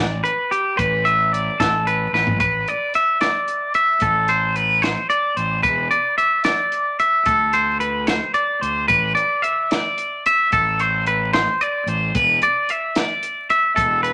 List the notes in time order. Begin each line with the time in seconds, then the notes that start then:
Already playing: A1 D5
0.24 B4, closed hi-hat
0.51 G4, closed hi-hat
0.77 A1 B4, kick, closed hi-hat
1.05 E5, closed hi-hat
1.33 D5, closed hi-hat
1.60 A1 A4, kick, snare, closed hi-hat
1.87 B4, closed hi-hat
2.13 A1 B4, snare
2.27 floor tom
2.40 A1 B4, kick, closed hi-hat
2.68 D5, closed hi-hat
2.94 E5, closed hi-hat
3.21 D5, snare, closed hi-hat
3.48 closed hi-hat
3.74 E5, closed hi-hat
4.00 A1 A4, kick, closed hi-hat
4.28 C5, closed hi-hat
4.56 B4, closed hi-hat
4.82 C5, snare, closed hi-hat
5.10 D5, closed hi-hat
5.37 A1 C5, closed hi-hat
5.63 E1 B4, kick, closed hi-hat
5.91 D5, closed hi-hat
6.18 E5, closed hi-hat
6.44 D5, snare, closed hi-hat
6.72 closed hi-hat
6.99 E5, closed hi-hat
7.26 D2 A4, kick, closed hi-hat
7.53 C5, closed hi-hat
7.80 B4, closed hi-hat
8.07 C5, snare, closed hi-hat
8.34 D5, closed hi-hat
8.61 D2 C5, closed hi-hat
8.88 A1 B4, kick, closed hi-hat
9.15 D5, closed hi-hat
9.42 E5, closed hi-hat
9.71 D5, snare, closed hi-hat
9.98 closed hi-hat
10.26 E5, closed hi-hat
10.52 A1 A4, kick, closed hi-hat
10.79 C5, closed hi-hat
11.06 B4, closed hi-hat
11.33 C5, snare, closed hi-hat
11.61 D5, closed hi-hat
11.86 A1 C5, closed hi-hat
12.15 E1 B4, kick, closed hi-hat
12.42 D5, closed hi-hat
12.69 E5, closed hi-hat
12.95 D5, snare, closed hi-hat
13.23 closed hi-hat
13.50 E5, closed hi-hat
13.76 E1 A4, kick, closed hi-hat
14.03 B4, closed hi-hat